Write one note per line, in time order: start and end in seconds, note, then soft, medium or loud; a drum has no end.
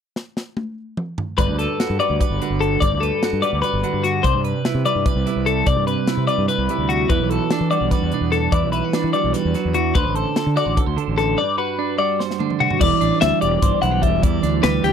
0.16 snare medium
0.37 snare medium
0.57 high tom medium
0.97 mid tom medium
1.18 floor tom medium
1.38 1.47 G1 medium
1.38 2.81 G2 medium
1.38 1.58 B4 medium
1.38 2.21 D5 medium
1.38 kick loud
1.38 closed hi-hat medium
1.48 1.66 D2 medium
1.59 1.99 A4 medium
1.59 2.00 B4 medium
1.59 snare soft
1.59 closed hi-hat medium
1.80 2.41 F#4 medium
1.80 snare loud
1.80 closed hi-hat medium
1.90 1.98 G2 medium
1.99 3.43 G3 medium
1.99 3.02 B4 medium
1.99 2.20 D5 medium
1.99 closed hi-hat medium
2.10 2.19 D2 medium
2.20 2.61 B4 medium
2.20 2.83 D5 medium
2.20 kick medium
2.20 closed hi-hat medium
2.30 2.39 G1 medium
2.41 2.82 D3 medium
2.41 2.80 F#4 medium
2.41 closed hi-hat medium
2.50 2.77 G1 medium
2.61 2.81 A4 medium
2.61 closed hi-hat medium
2.80 2.91 G1 medium
2.80 4.24 G2 medium
2.80 3.01 D5 medium
2.80 3.64 D5 medium
2.80 kick loud
2.80 closed hi-hat medium
2.92 3.10 D2 medium
3.00 3.42 A4 medium
3.00 3.43 B4 medium
3.00 closed hi-hat medium
3.23 3.83 F#4 medium
3.23 snare medium
3.23 closed hi-hat medium
3.33 3.42 G2 medium
3.42 4.85 G3 medium
3.42 4.27 B4 medium
3.42 3.61 D5 medium
3.42 closed hi-hat medium
3.53 3.62 D2 medium
3.62 4.03 B4 medium
3.62 4.24 D5 medium
3.62 closed hi-hat medium
3.73 3.82 G1 medium
3.83 4.24 D3 medium
3.83 4.22 F#4 medium
3.83 closed hi-hat medium
3.93 4.20 G2 medium
4.04 4.24 F#4 medium
4.04 snare soft
4.04 closed hi-hat medium
4.23 4.33 C2 medium
4.23 5.65 C3 medium
4.23 4.44 C5 medium
4.23 5.05 D5 medium
4.23 kick medium
4.23 closed hi-hat medium
4.35 4.52 G2 medium
4.44 4.85 B4 medium
4.44 4.86 B4 medium
4.44 closed hi-hat medium
4.65 5.27 E4 medium
4.65 snare loud
4.65 closed hi-hat medium
4.75 4.84 C3 medium
4.86 5.26 G3 medium
4.86 5.69 B4 soft
4.86 5.06 D5 medium
4.86 closed hi-hat medium
4.95 5.04 G2 medium
5.06 5.47 B4 medium
5.06 5.66 D5 medium
5.06 kick loud
5.06 closed hi-hat medium
5.16 5.25 C2 medium
5.26 6.28 G3 medium
5.26 5.70 E4 soft
5.26 closed hi-hat medium
5.36 5.63 C2 medium
5.46 5.67 A4 medium
5.46 closed hi-hat medium
5.66 5.76 C2 medium
5.66 7.07 C3 medium
5.66 6.49 D5 medium
5.66 5.87 D5 medium
5.66 kick loud
5.66 closed hi-hat medium
5.77 5.95 G2 medium
5.87 6.27 B4 medium
5.87 6.28 B4 soft
5.87 closed hi-hat medium
6.07 6.70 E4 medium
6.07 snare loud
6.07 closed hi-hat medium
6.17 6.27 C3 medium
6.27 6.70 G3 medium
6.27 7.12 B4 medium
6.27 6.48 D5 medium
6.27 closed hi-hat medium
6.38 6.47 G2 medium
6.48 6.89 B4 medium
6.48 7.11 D5 medium
6.48 closed hi-hat medium
6.58 6.67 C2 medium
6.69 7.11 G3 medium
6.69 7.35 E4 medium
6.69 closed hi-hat medium
6.78 7.05 D2 medium
6.89 7.10 F#4 medium
6.89 closed hi-hat medium
7.10 7.19 E2 medium
7.10 8.52 E3 medium
7.10 7.30 B4 medium
7.10 7.92 B4 medium
7.10 kick loud
7.10 closed hi-hat medium
7.20 7.38 B1 medium
7.30 7.72 F#4 medium
7.30 7.70 A4 medium
7.30 closed hi-hat medium
7.50 8.13 D4 medium
7.50 snare loud
7.50 closed hi-hat medium
7.61 7.70 E3 medium
7.71 9.13 G3 medium
7.71 8.56 F#4 soft
7.71 7.91 D5 medium
7.71 closed hi-hat soft
7.81 7.90 B1 medium
7.91 8.32 B4 medium
7.91 8.53 D5 medium
7.91 kick medium
7.91 snare soft
7.91 closed hi-hat medium
8.02 8.11 E2 medium
8.12 8.51 B2 medium
8.12 8.56 D4 medium
8.12 closed hi-hat soft
8.21 8.48 E2 medium
8.32 8.53 A4 medium
8.32 snare soft
8.32 closed hi-hat medium
8.52 8.61 E2 medium
8.52 9.55 E3 medium
8.52 9.94 B4 medium
8.52 8.72 D5 medium
8.52 kick loud
8.52 closed hi-hat medium
8.63 8.81 B1 medium
8.72 8.84 E4 medium
8.72 9.13 B4 medium
8.72 closed hi-hat medium
8.84 9.14 F#4 soft
8.93 9.99 D4 medium
8.93 snare loud
8.93 closed hi-hat medium
9.04 9.13 E3 medium
9.13 9.33 G3 medium
9.13 9.99 F#4 medium
9.13 9.33 D5 medium
9.13 closed hi-hat medium
9.24 9.33 B1 medium
9.33 9.55 G3 medium
9.33 9.75 B4 medium
9.33 snare soft
9.33 closed hi-hat medium
9.45 9.54 E2 medium
9.54 9.75 F#3 medium
9.54 snare soft
9.54 closed hi-hat medium
9.65 9.92 E2 medium
9.74 9.95 E3 medium
9.74 9.95 F#4 medium
9.74 closed hi-hat medium
9.95 10.04 D2 medium
9.95 10.95 D3 medium
9.95 10.15 B4 medium
9.95 10.15 C5 medium
9.95 kick loud
9.95 closed hi-hat medium
10.05 10.23 A1 medium
10.15 10.57 A4 medium
10.15 10.56 C5 medium
10.15 closed hi-hat medium
10.36 10.55 A4 medium
10.36 snare loud
10.36 closed hi-hat medium
10.47 10.55 D3 medium
10.56 11.35 F#4 medium
10.56 10.65 A4 medium
10.56 10.77 D5 medium
10.56 snare soft
10.56 closed hi-hat medium
10.65 10.75 A1 medium
10.65 10.76 C5 medium
10.77 10.86 A4 medium
10.77 kick loud
10.77 closed hi-hat medium
10.86 10.96 D2 medium
10.86 11.37 C5 soft
10.97 11.38 D3 medium
10.97 11.36 A4 medium
10.97 closed hi-hat medium
11.08 11.34 A1 medium
11.18 11.38 A4 medium
11.18 snare soft
11.18 closed hi-hat soft
11.37 12.80 G2 medium
11.37 12.19 B4 medium
11.37 11.58 D5 medium
11.58 11.98 F#4 medium
11.58 11.98 B4 medium
11.79 12.39 D4 medium
11.99 13.20 G3 medium
11.99 12.78 F#4 medium
11.99 12.19 D5 medium
12.20 12.78 C5 medium
12.20 snare medium
12.31 snare soft
12.39 12.79 D3 medium
12.39 12.79 D4 medium
12.39 high tom medium
12.50 mid tom medium
12.60 12.81 F#4 medium
12.60 mid tom medium
12.71 floor tom medium
12.79 12.90 E1 loud
12.79 14.22 E3 medium
12.79 13.21 D5 medium
12.79 kick loud
12.79 crash loud
13.01 13.10 A1 medium
13.01 14.21 D4 medium
13.01 closed hi-hat medium
13.21 13.31 D2 medium
13.21 14.01 G3 medium
13.21 13.41 E5 medium
13.21 snare loud
13.21 closed hi-hat medium
13.41 13.60 E1 medium
13.41 13.82 G4 medium
13.41 13.81 D5 medium
13.41 closed hi-hat medium
13.62 13.71 G1 medium
13.62 14.21 C5 medium
13.62 kick loud
13.62 closed hi-hat medium
13.82 14.00 B1 medium
13.82 13.91 E4 medium
13.82 14.02 F#5 medium
13.82 closed hi-hat medium
13.91 14.23 G4 soft
14.02 14.21 E1 medium
14.02 14.62 G3 medium
14.02 14.23 E5 medium
14.02 kick medium
14.02 closed hi-hat medium
14.23 14.41 E2 medium
14.23 14.93 E3 medium
14.23 14.64 D5 medium
14.23 kick loud
14.23 closed hi-hat medium
14.43 14.61 D2 medium
14.43 14.93 D4 medium
14.43 snare soft
14.43 closed hi-hat medium
14.63 14.82 D2 loud
14.63 14.93 G3 medium
14.63 14.84 B4 medium
14.63 snare loud
14.63 closed hi-hat medium
14.84 14.93 D2 medium
14.84 14.93 G4 medium
14.84 snare soft
14.84 closed hi-hat medium